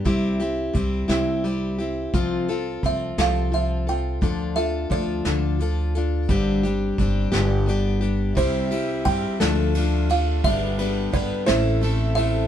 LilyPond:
<<
  \new Staff \with { instrumentName = "Kalimba" } { \time 6/8 \key c \major \tempo 4. = 58 r2. | r4 e''8 f''8 e''8 g''8~ | g''8 e''8 d''2 | r2. |
c''4 g''4. f''8 | e''4 d''8 c''4 e''8 | }
  \new Staff \with { instrumentName = "Steel-string acoustic guitar" } { \time 6/8 \key c \major <c g c' e' g'>8 <c' e' g'>8 <g c' e' g'>8 <c g c' e' g'>8 <g c' e' g'>8 <c' e' g'>8 | <c f c' f' a'>8 <c' f' a'>8 <f c' f' a'>8 <c f c' f' a'>8 <f c' f' a'>8 <c' f' a'>8 | <d f d' f' a'>8 <d' f' a'>8 <f d' f' a'>8 <d f d' f' a'>8 <f d' f' a'>8 <d' f' a'>8 | <g, d g c' d' g'>8 <g c' d' g'>8 <g c' d' g'>8 <g, d g b d' g'>8 <g b d' g'>8 <g b d' g'>8 |
<c g c' e' g'>8 <c' e' g'>8 <g c' e' g'>8 <d f d' f' a'>8 <f d' f' a'>8 <d' f' a'>8 | <g, d g b d' b'>8 <g b d' b'>8 <g b d' b'>8 <a, e a c' e' a'>8 <a c' e' a'>8 <a c' e' a'>8 | }
  \new Staff \with { instrumentName = "Harmonium" } { \time 6/8 \key c \major r2. | r2. | r2. | r2. |
<g e'>4. <a f'>4. | <b g'>4. <a e'>4. | }
  \new Staff \with { instrumentName = "Harmonium" } { \clef bass \time 6/8 \key c \major r2. | r2. | r2. | r2. |
c4. d4.~ | d4. c4. | }
  \new Staff \with { instrumentName = "Upright bass" } { \clef bass \time 6/8 \key c \major c,4 c,8 c,4. | c,4 c,8 c,4. | d,4 d,8 d,4. | g,,4 g,,8 g,,4. |
c,4 g,16 r16 d,4. | g,,4 g,,16 r16 a,,4. | }
  \new DrumStaff \with { instrumentName = "Drums" } \drummode { \time 6/8 <hh bd>8 hh8 <hh bd>8 <hh sn>8 hh8 hh8 | <hh bd>8 hh8 <hh bd>8 <hh sn>8 hh8 hh8 | <hh bd>8 hh8 <hh bd>8 <hh sn>8 hh8 hh8 | <hh bd>8 hh8 <hh bd>8 <hh sn>8 hh8 hh8 |
<bd cymr>8 cymr8 <bd cymr>8 <cymr sn>8 cymr8 cymr8 | <bd cymr>8 cymr8 <bd cymr>8 <cymr sn>8 cymr8 cymr8 | }
>>